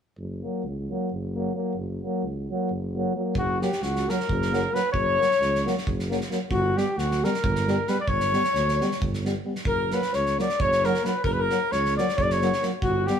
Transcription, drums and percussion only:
3.35 kick medium
3.62 snare soft
3.72 snare soft
3.82 snare soft
3.96 snare soft
4.09 snare soft
4.20 snare soft
4.29 kick medium
4.42 snare soft
4.53 snare soft
4.75 snare soft
4.94 kick medium
5.21 snare soft
5.31 snare soft
5.42 snare soft
5.55 snare soft
5.67 snare soft
5.77 snare soft
5.87 kick medium
5.99 snare soft
6.11 snare soft
6.21 snare soft
6.31 snare soft
6.51 kick medium
6.77 snare soft
6.98 snare soft
7.11 snare soft
7.24 snare soft
7.34 snare soft
7.44 kick medium
7.55 snare soft
7.68 snare soft
7.87 snare soft
8.08 kick medium
8.20 snare soft
8.33 snare soft
8.44 snare soft
8.55 snare soft
8.68 snare soft
8.81 snare soft
8.91 snare soft
9.02 kick medium
9.13 snare soft
9.25 snare soft
9.55 snare soft
9.65 kick medium
9.91 snare soft
10.02 snare soft
10.13 snare soft
10.26 snare soft
10.39 snare soft
10.49 snare soft
10.60 kick medium
10.72 snare soft
10.84 snare soft
10.94 snare soft
11.05 snare soft
11.24 kick medium
11.50 snare soft
11.72 snare soft
11.85 snare soft
11.98 snare soft
12.08 snare soft
12.18 kick medium
12.30 snare soft
12.41 snare soft
12.53 snare soft
12.62 snare soft
12.82 kick medium
13.07 snare soft

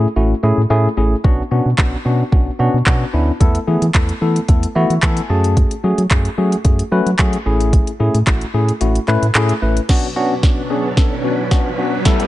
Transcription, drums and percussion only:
1.24 kick loud
1.78 kick loud
1.78 clap loud
2.32 kick loud
2.86 kick loud
2.86 clap loud
3.41 kick loud
3.41 closed hi-hat medium
3.55 closed hi-hat medium
3.82 closed hi-hat medium
3.94 kick loud
3.94 clap loud
3.94 closed hi-hat medium
4.09 closed hi-hat soft
4.36 closed hi-hat medium
4.48 kick loud
4.48 closed hi-hat medium
4.63 closed hi-hat medium
4.90 closed hi-hat soft
5.03 kick loud
5.03 clap loud
5.03 closed hi-hat medium
5.17 closed hi-hat medium
5.44 closed hi-hat medium
5.57 kick loud
5.57 closed hi-hat medium
5.71 closed hi-hat medium
5.98 closed hi-hat medium
6.11 kick loud
6.11 clap loud
6.11 closed hi-hat medium
6.25 closed hi-hat soft
6.52 closed hi-hat medium
6.65 kick loud
6.65 closed hi-hat medium
6.79 closed hi-hat medium
7.07 closed hi-hat soft
7.19 kick loud
7.19 clap loud
7.19 closed hi-hat medium
7.33 closed hi-hat medium
7.60 closed hi-hat medium
7.73 kick loud
7.73 closed hi-hat medium
7.87 closed hi-hat medium
8.15 closed hi-hat medium
8.27 kick loud
8.27 clap loud
8.27 closed hi-hat medium
8.41 closed hi-hat soft
8.69 closed hi-hat medium
8.81 closed hi-hat medium
8.95 closed hi-hat medium
9.08 clap medium
9.23 closed hi-hat soft
9.35 clap loud
9.35 closed hi-hat medium
9.49 closed hi-hat medium
9.77 closed hi-hat medium
9.89 kick loud
9.89 snare soft
9.89 crash medium
10.43 kick loud
10.43 snare medium
10.97 kick loud
10.97 snare medium
11.51 kick loud
11.51 snare medium
12.05 kick loud
12.05 snare medium
12.05 closed hi-hat medium
12.20 closed hi-hat medium

